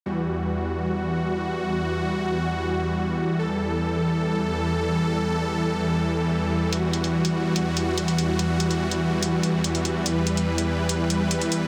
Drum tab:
HH |----------------|----------------|----------------|----------------|

HH |x-xx-x--x-x-xxx-|x-xx-x--x-x-xxx-|x-xx-x--x-x-xxx-|